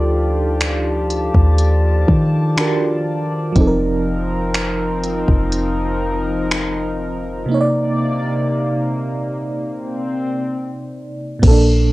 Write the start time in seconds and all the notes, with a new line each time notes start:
Already playing: D2 F3 D4 D#4 F4 G4 A4 D5 A5
0.61 finger snap, closed hi-hat
1.10 closed hi-hat
1.34 D#2, kick
1.58 closed hi-hat
2.08 D#3, kick
2.56 D#3 D4 F4 F#4, finger snap, closed hi-hat
2.60 A#4
2.66 G4
3.53 F1 F3 C4, kick, closed hi-hat
3.57 F3 C4 D#4 A#4
3.61 A4
3.67 A#4
4.54 finger snap, closed hi-hat
5.04 closed hi-hat
5.28 F1, kick
5.52 closed hi-hat
6.51 finger snap, closed hi-hat
7.46 C3 A#3
7.50 C3 D#4 D5
7.54 C#5
7.61 D5
9.46 C4
11.39 A#1 A#2 A#3, kick, closed hi-hat, crash
11.45 C4 A4
11.51 D4